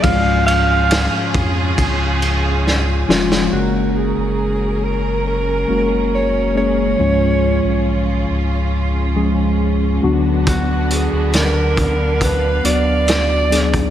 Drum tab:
RD |x-x-x-x-x-x-----|----------------|----------------|----------------|
HH |----------------|----------------|----------------|x-x-x-x-x-x-x-xx|
SD |----o-------o-oo|----------------|----------------|----o-------o-o-|
BD |o-----o-o-------|----------------|----------------|o-----o-o------o|